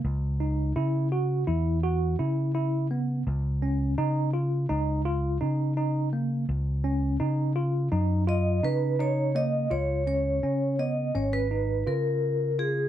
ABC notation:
X:1
M:9/8
L:1/16
Q:3/8=56
K:Dbmix
V:1 name="Vibraphone"
z16 z2 | z16 z2 | z8 z2 e2 c2 d2 e2 | d2 d4 e2 d c3 B4 A2 |]
V:2 name="Tine electric piano"
z2 E2 _F2 G2 F2 G2 F2 F2 C2 | z2 D2 E2 F2 E2 F2 E2 E2 B,2 | z2 D2 E2 F2 E2 F2 E2 E2 B,2 | F2 D2 D2 C2 D2 E2 F4 F2 |]
V:3 name="Fingered electric bass" clef=bass
D,,4 D,4 _F,,4 D,6 | D,,4 D,4 D,,4 D,6 | D,,4 D,4 G,,4 D,6 | D,,4 D,4 A,,,4 D,6 |]